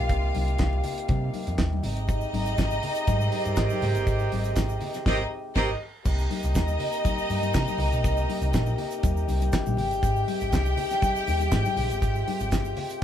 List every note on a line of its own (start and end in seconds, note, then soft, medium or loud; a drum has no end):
0.00 5.89 C3 medium
0.00 1.80 A#3 medium
0.00 5.89 D#4 medium
0.00 1.54 F4 medium
0.00 1.80 G4 medium
0.00 1.54 F5 loud
0.09 0.29 C2 loud
0.09 kick loud
0.09 closed hi-hat medium
0.09 muted conga soft
0.23 muted conga soft
0.34 0.54 C2 medium
0.34 open hi-hat medium
0.34 high conga medium
0.48 closed hi-hat soft
0.58 0.79 C2 medium
0.58 kick loud
0.58 snare loud
0.58 clap medium
0.58 closed hi-hat medium
0.73 muted conga soft
0.84 open hi-hat medium
0.84 low conga medium
0.98 closed hi-hat medium
1.09 1.29 C3 loud
1.09 kick loud
1.09 closed hi-hat medium
1.09 muted conga soft
1.09 high conga medium
1.34 open hi-hat medium
1.34 high conga medium
1.47 1.57 F2 medium
1.47 closed hi-hat medium
1.58 1.78 D#2 loud
1.58 kick loud
1.58 snare loud
1.58 clap medium
1.58 closed hi-hat medium
1.73 high conga medium
1.83 2.23 G#1 medium
1.83 5.89 G#3 medium
1.83 5.02 D#4 loud
1.83 3.81 G4 medium
1.83 5.02 D#5 loud
1.83 open hi-hat medium
1.83 low conga medium
1.97 closed hi-hat soft
2.08 kick loud
2.08 closed hi-hat medium
2.08 muted conga soft
2.08 shaker medium
2.21 muted conga soft
2.21 shaker soft
2.34 2.53 G#1 loud
2.34 open hi-hat medium
2.34 high conga medium
2.46 closed hi-hat soft
2.46 shaker soft
2.58 2.78 G#1 medium
2.58 kick loud
2.58 snare loud
2.58 clap medium
2.58 closed hi-hat medium
2.58 shaker medium
2.71 muted conga soft
2.71 shaker medium
2.83 open hi-hat medium
2.83 low conga medium
2.95 closed hi-hat medium
2.95 shaker medium
3.07 3.27 G#2 loud
3.07 5.02 D#3 medium
3.07 5.02 C4 medium
3.07 5.02 G4 loud
3.07 kick loud
3.07 closed hi-hat medium
3.07 muted conga soft
3.07 high conga medium
3.07 shaker medium
3.21 shaker medium
3.32 open hi-hat medium
3.32 high conga medium
3.45 3.55 G2 medium
3.45 closed hi-hat soft
3.45 shaker soft
3.56 3.68 G#2 medium
3.56 kick medium
3.56 snare loud
3.56 clap medium
3.56 closed hi-hat medium
3.56 muted conga soft
3.56 shaker medium
3.70 high conga medium
3.70 shaker medium
3.81 3.93 G#2 medium
3.81 5.89 G4 medium
3.81 open hi-hat medium
3.81 low conga medium
3.95 4.05 G1 medium
3.95 closed hi-hat medium
3.95 shaker medium
4.07 4.26 G#1 loud
4.07 kick loud
4.07 closed hi-hat medium
4.07 shaker medium
4.19 muted conga soft
4.19 shaker soft
4.32 4.52 G#1 medium
4.32 open hi-hat medium
4.32 high conga medium
4.44 closed hi-hat soft
4.44 shaker medium
4.56 4.76 G#1 loud
4.56 kick medium
4.56 snare loud
4.56 clap medium
4.56 closed hi-hat medium
4.56 shaker medium
4.69 shaker medium
4.81 open hi-hat medium
4.81 low conga medium
4.94 snare soft
4.94 closed hi-hat medium
4.94 shaker medium
5.06 5.23 G#1 loud
5.06 5.19 D#3 loud
5.06 5.19 C4 medium
5.06 5.24 D#4 loud
5.06 5.19 G4 loud
5.06 5.23 D#5 loud
5.06 kick loud
5.06 snare loud
5.06 crash medium
5.55 5.73 G#1 loud
5.55 5.69 D#3 loud
5.55 5.69 C4 loud
5.55 5.73 D#4 loud
5.55 5.69 G4 loud
5.55 5.73 D#5 loud
5.55 kick loud
5.55 snare loud
5.55 crash medium
6.05 6.25 C2 loud
6.05 13.04 C3 medium
6.05 9.75 A#3 medium
6.05 9.49 D#4 loud
6.05 9.75 D#4 medium
6.05 13.04 G4 medium
6.05 9.49 D#5 loud
6.05 kick loud
6.05 crash loud
6.05 muted conga soft
6.05 shaker medium
6.18 shaker soft
6.31 open hi-hat medium
6.31 high conga medium
6.43 6.53 C2 loud
6.43 closed hi-hat soft
6.43 shaker medium
6.55 6.75 D#2 loud
6.55 kick loud
6.55 snare loud
6.55 clap medium
6.55 closed hi-hat medium
6.55 shaker medium
6.68 muted conga soft
6.68 shaker soft
6.80 open hi-hat medium
6.80 low conga medium
6.92 closed hi-hat medium
6.92 shaker medium
7.05 kick loud
7.05 closed hi-hat medium
7.05 muted conga soft
7.05 high conga medium
7.05 shaker medium
7.18 shaker medium
7.30 7.49 G2 medium
7.30 open hi-hat medium
7.30 high conga medium
7.30 shaker medium
7.42 closed hi-hat medium
7.42 high conga medium
7.42 shaker soft
7.54 7.65 C3 loud
7.54 kick loud
7.54 snare loud
7.54 clap medium
7.54 closed hi-hat medium
7.54 shaker medium
7.67 muted conga soft
7.67 high conga medium
7.67 shaker medium
7.78 7.90 C2 medium
7.78 open hi-hat medium
7.78 low conga medium
7.92 8.02 B1 medium
7.92 closed hi-hat medium
7.92 shaker medium
8.04 8.24 C2 loud
8.04 kick loud
8.04 closed hi-hat medium
8.04 shaker medium
8.17 muted conga soft
8.17 shaker soft
8.29 open hi-hat medium
8.29 high conga medium
8.42 8.51 C2 loud
8.42 closed hi-hat soft
8.42 shaker medium
8.53 8.73 A#1 loud
8.53 kick loud
8.53 snare loud
8.53 clap medium
8.53 closed hi-hat medium
8.53 muted conga soft
8.53 shaker medium
8.66 muted conga soft
8.66 shaker medium
8.78 open hi-hat medium
8.78 low conga medium
8.91 closed hi-hat medium
8.91 shaker medium
9.03 9.23 D#2 medium
9.03 kick loud
9.03 closed hi-hat medium
9.03 muted conga soft
9.03 high conga medium
9.03 shaker medium
9.17 shaker medium
9.28 9.48 C2 medium
9.28 open hi-hat medium
9.28 high conga medium
9.28 shaker soft
9.41 closed hi-hat medium
9.41 high conga medium
9.41 shaker medium
9.52 kick loud
9.52 snare loud
9.52 clap loud
9.52 closed hi-hat medium
9.52 shaker medium
9.66 9.76 A#1 medium
9.66 high conga medium
9.66 shaker medium
9.77 9.93 G#1 medium
9.77 13.04 G#3 medium
9.77 11.75 D#4 medium
9.77 13.04 G4 medium
9.77 13.04 G5 loud
9.77 open hi-hat medium
9.77 low conga medium
9.91 10.01 G1 medium
9.91 closed hi-hat medium
9.91 shaker medium
10.02 10.22 G#1 loud
10.02 kick loud
10.02 closed hi-hat medium
10.02 muted conga soft
10.02 shaker medium
10.16 shaker soft
10.28 open hi-hat medium
10.28 high conga medium
10.40 10.51 G#1 loud
10.40 closed hi-hat soft
10.40 shaker medium
10.52 10.72 C2 medium
10.52 kick medium
10.52 snare loud
10.52 clap medium
10.52 closed hi-hat medium
10.52 shaker medium
10.65 muted conga soft
10.65 shaker medium
10.77 open hi-hat medium
10.77 low conga medium
10.90 snare soft
10.90 closed hi-hat soft
10.90 shaker medium
11.02 kick loud
11.02 closed hi-hat medium
11.02 muted conga soft
11.02 high conga medium
11.02 shaker medium
11.16 shaker medium
11.27 11.47 D#2 medium
11.27 open hi-hat medium
11.27 high conga medium
11.27 shaker medium
11.40 closed hi-hat medium
11.40 high conga medium
11.40 shaker medium
11.51 11.63 G#2 loud
11.51 kick loud
11.51 snare loud
11.51 clap loud
11.51 closed hi-hat medium
11.51 muted conga soft
11.51 shaker medium
11.65 muted conga soft
11.65 high conga medium
11.65 shaker medium
11.76 11.88 A#1 loud
11.76 13.04 F4 medium
11.76 open hi-hat medium
11.76 low conga medium
11.90 12.00 G1 medium
11.90 closed hi-hat medium
11.90 shaker medium
12.02 12.22 G#1 loud
12.02 kick loud
12.02 closed hi-hat medium
12.02 shaker medium
12.15 muted conga soft
12.15 shaker soft
12.28 open hi-hat medium
12.28 high conga medium
12.40 12.50 G#1 loud
12.40 closed hi-hat soft
12.40 shaker medium
12.51 12.72 G1 medium
12.51 kick medium
12.51 snare loud
12.51 clap medium
12.51 closed hi-hat medium
12.51 shaker medium
12.65 muted conga soft
12.65 shaker medium
12.77 open hi-hat medium
12.77 low conga medium
12.90 closed hi-hat medium
12.90 shaker medium